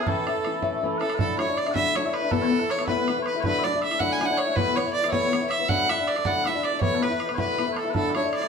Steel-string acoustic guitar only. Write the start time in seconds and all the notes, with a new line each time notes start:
0.07 A2 E3 A3 C#4 E4
0.27 A3 C#4 E4
0.45 E3 A3 C#4 E4
0.62 A2 E3 A3 C#4 E4
0.83 E3 A3 C#4 E4
1.01 A3 C#4 E4
1.19 D3 F#3 A3 D4 E4
1.38 F#3 A3 D4 E4
1.48 A3 D4 E4
1.66 A3 D4 E4
1.74 D3 F#3 A3 D4 E4
1.96 F#3 A3 D4 E4
2.04 A3 D4 E4
2.22 A3 D4 E4
2.31 E2 B2 E3 A3 B3 E4
2.50 E3 A3 B3 E4
2.60 E3 A3 B3 E4
2.78 E3 A3 B3 E4
2.88 E2 B2 E3 A3 B3 E4
3.08 E3 A3 B3 E4
3.17 E3 A3 B3 E4
3.35 E3 A3 B3 E4
3.44 D3 F#3 A3 D4 E4
3.64 F#3 A3 D4 E4
3.74 A3 D4 E4
3.92 A3 D4 E4
4.01 D3 F#3 A3 D4 E4
4.20 F#3 A3 D4 E4
4.29 A3 D4 E4
4.47 A3 D4 E4
4.55 E2 B2 E3 A3 B3 E4
4.76 E3 A3 B3 E4
4.85 E3 A3 B3 E4
5.03 E3 A3 B3 E4
5.12 E2 B2 E3 A3 B3 E4
5.32 E3 A3 B3 E4
5.41 E3 A3 B3 E4
5.59 E3 A3 B3 E4
5.69 D3 F#3 A3 D4 E4
5.89 F#3 A3 D4 E4
5.98 A3 D4 E4
6.16 A3 E4
6.25 D3 F#3 A3 D4 E4
6.45 F#3 A3 D4 E4
6.54 A3 D4 E4
6.72 A3 D4 E4
6.81 E2 B2 E3 A3 B3 E4
7.01 E3 A3 B3 E4
7.10 E3 A3 B3 E4
7.28 E3 A3 B3 E4
7.38 E2 B2 E3 A3 B3 E4
7.58 E3 A3 B3 E4
7.67 E3 A3 B3 E4
7.85 E3 A3 B3 E4
7.94 D3 F#3 A3 D4 E4
8.14 F#3 A3 D4 E4
8.23 A3 D4 E4
8.41 A3 D4 E4